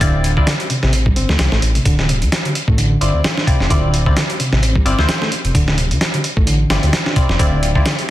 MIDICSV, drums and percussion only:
0, 0, Header, 1, 2, 480
1, 0, Start_track
1, 0, Key_signature, -1, "minor"
1, 0, Tempo, 461538
1, 10, Time_signature, 4, 2, 24, 8
1, 8425, End_track
2, 0, Start_track
2, 0, Title_t, "Drums"
2, 10, Note_on_c, 9, 36, 114
2, 11, Note_on_c, 9, 42, 90
2, 114, Note_off_c, 9, 36, 0
2, 115, Note_off_c, 9, 42, 0
2, 251, Note_on_c, 9, 42, 68
2, 355, Note_off_c, 9, 42, 0
2, 384, Note_on_c, 9, 36, 96
2, 488, Note_off_c, 9, 36, 0
2, 488, Note_on_c, 9, 38, 118
2, 488, Note_on_c, 9, 42, 90
2, 592, Note_off_c, 9, 38, 0
2, 592, Note_off_c, 9, 42, 0
2, 624, Note_on_c, 9, 42, 46
2, 727, Note_off_c, 9, 42, 0
2, 727, Note_on_c, 9, 42, 70
2, 831, Note_off_c, 9, 42, 0
2, 861, Note_on_c, 9, 38, 53
2, 965, Note_off_c, 9, 38, 0
2, 966, Note_on_c, 9, 42, 90
2, 1070, Note_off_c, 9, 42, 0
2, 1103, Note_on_c, 9, 36, 101
2, 1207, Note_off_c, 9, 36, 0
2, 1208, Note_on_c, 9, 42, 68
2, 1312, Note_off_c, 9, 42, 0
2, 1343, Note_on_c, 9, 38, 54
2, 1445, Note_off_c, 9, 38, 0
2, 1445, Note_on_c, 9, 38, 108
2, 1445, Note_on_c, 9, 42, 78
2, 1549, Note_off_c, 9, 38, 0
2, 1549, Note_off_c, 9, 42, 0
2, 1582, Note_on_c, 9, 38, 49
2, 1686, Note_off_c, 9, 38, 0
2, 1688, Note_on_c, 9, 42, 68
2, 1792, Note_off_c, 9, 42, 0
2, 1823, Note_on_c, 9, 42, 46
2, 1927, Note_off_c, 9, 42, 0
2, 1929, Note_on_c, 9, 36, 117
2, 1929, Note_on_c, 9, 42, 91
2, 2033, Note_off_c, 9, 36, 0
2, 2033, Note_off_c, 9, 42, 0
2, 2068, Note_on_c, 9, 38, 56
2, 2172, Note_off_c, 9, 38, 0
2, 2174, Note_on_c, 9, 42, 71
2, 2278, Note_off_c, 9, 42, 0
2, 2307, Note_on_c, 9, 42, 43
2, 2411, Note_off_c, 9, 42, 0
2, 2415, Note_on_c, 9, 38, 117
2, 2415, Note_on_c, 9, 42, 89
2, 2519, Note_off_c, 9, 38, 0
2, 2519, Note_off_c, 9, 42, 0
2, 2551, Note_on_c, 9, 42, 44
2, 2655, Note_off_c, 9, 42, 0
2, 2655, Note_on_c, 9, 42, 73
2, 2759, Note_off_c, 9, 42, 0
2, 2785, Note_on_c, 9, 36, 95
2, 2889, Note_off_c, 9, 36, 0
2, 2892, Note_on_c, 9, 42, 89
2, 2996, Note_off_c, 9, 42, 0
2, 3135, Note_on_c, 9, 42, 69
2, 3239, Note_off_c, 9, 42, 0
2, 3374, Note_on_c, 9, 38, 115
2, 3374, Note_on_c, 9, 42, 87
2, 3478, Note_off_c, 9, 38, 0
2, 3478, Note_off_c, 9, 42, 0
2, 3510, Note_on_c, 9, 38, 52
2, 3612, Note_on_c, 9, 36, 97
2, 3614, Note_off_c, 9, 38, 0
2, 3615, Note_on_c, 9, 42, 68
2, 3716, Note_off_c, 9, 36, 0
2, 3719, Note_off_c, 9, 42, 0
2, 3749, Note_on_c, 9, 38, 42
2, 3851, Note_on_c, 9, 36, 115
2, 3853, Note_off_c, 9, 38, 0
2, 3853, Note_on_c, 9, 42, 94
2, 3955, Note_off_c, 9, 36, 0
2, 3957, Note_off_c, 9, 42, 0
2, 4094, Note_on_c, 9, 42, 70
2, 4198, Note_off_c, 9, 42, 0
2, 4226, Note_on_c, 9, 36, 95
2, 4330, Note_off_c, 9, 36, 0
2, 4332, Note_on_c, 9, 38, 118
2, 4332, Note_on_c, 9, 42, 92
2, 4436, Note_off_c, 9, 38, 0
2, 4436, Note_off_c, 9, 42, 0
2, 4470, Note_on_c, 9, 42, 46
2, 4574, Note_off_c, 9, 42, 0
2, 4574, Note_on_c, 9, 42, 71
2, 4678, Note_off_c, 9, 42, 0
2, 4706, Note_on_c, 9, 38, 53
2, 4810, Note_off_c, 9, 38, 0
2, 4814, Note_on_c, 9, 42, 91
2, 4918, Note_off_c, 9, 42, 0
2, 4945, Note_on_c, 9, 36, 100
2, 5049, Note_off_c, 9, 36, 0
2, 5053, Note_on_c, 9, 42, 68
2, 5157, Note_off_c, 9, 42, 0
2, 5186, Note_on_c, 9, 38, 53
2, 5290, Note_off_c, 9, 38, 0
2, 5290, Note_on_c, 9, 38, 116
2, 5290, Note_on_c, 9, 42, 88
2, 5394, Note_off_c, 9, 38, 0
2, 5394, Note_off_c, 9, 42, 0
2, 5427, Note_on_c, 9, 38, 49
2, 5531, Note_off_c, 9, 38, 0
2, 5531, Note_on_c, 9, 42, 67
2, 5635, Note_off_c, 9, 42, 0
2, 5665, Note_on_c, 9, 42, 46
2, 5769, Note_off_c, 9, 42, 0
2, 5769, Note_on_c, 9, 36, 117
2, 5771, Note_on_c, 9, 42, 93
2, 5873, Note_off_c, 9, 36, 0
2, 5875, Note_off_c, 9, 42, 0
2, 5905, Note_on_c, 9, 38, 58
2, 6009, Note_off_c, 9, 38, 0
2, 6009, Note_on_c, 9, 42, 69
2, 6113, Note_off_c, 9, 42, 0
2, 6147, Note_on_c, 9, 42, 45
2, 6250, Note_off_c, 9, 42, 0
2, 6250, Note_on_c, 9, 38, 118
2, 6250, Note_on_c, 9, 42, 91
2, 6354, Note_off_c, 9, 38, 0
2, 6354, Note_off_c, 9, 42, 0
2, 6384, Note_on_c, 9, 42, 46
2, 6488, Note_off_c, 9, 42, 0
2, 6490, Note_on_c, 9, 42, 70
2, 6594, Note_off_c, 9, 42, 0
2, 6623, Note_on_c, 9, 36, 98
2, 6727, Note_off_c, 9, 36, 0
2, 6729, Note_on_c, 9, 42, 90
2, 6833, Note_off_c, 9, 42, 0
2, 6969, Note_on_c, 9, 38, 103
2, 6969, Note_on_c, 9, 42, 79
2, 7073, Note_off_c, 9, 38, 0
2, 7073, Note_off_c, 9, 42, 0
2, 7104, Note_on_c, 9, 42, 41
2, 7208, Note_off_c, 9, 42, 0
2, 7208, Note_on_c, 9, 38, 118
2, 7208, Note_on_c, 9, 42, 87
2, 7312, Note_off_c, 9, 38, 0
2, 7312, Note_off_c, 9, 42, 0
2, 7346, Note_on_c, 9, 38, 54
2, 7449, Note_on_c, 9, 36, 95
2, 7449, Note_on_c, 9, 42, 68
2, 7450, Note_off_c, 9, 38, 0
2, 7553, Note_off_c, 9, 36, 0
2, 7553, Note_off_c, 9, 42, 0
2, 7585, Note_on_c, 9, 38, 44
2, 7689, Note_off_c, 9, 38, 0
2, 7689, Note_on_c, 9, 36, 116
2, 7691, Note_on_c, 9, 42, 94
2, 7793, Note_off_c, 9, 36, 0
2, 7795, Note_off_c, 9, 42, 0
2, 7933, Note_on_c, 9, 42, 71
2, 8037, Note_off_c, 9, 42, 0
2, 8064, Note_on_c, 9, 36, 96
2, 8168, Note_off_c, 9, 36, 0
2, 8170, Note_on_c, 9, 38, 122
2, 8170, Note_on_c, 9, 42, 92
2, 8274, Note_off_c, 9, 38, 0
2, 8274, Note_off_c, 9, 42, 0
2, 8305, Note_on_c, 9, 42, 46
2, 8409, Note_off_c, 9, 42, 0
2, 8425, End_track
0, 0, End_of_file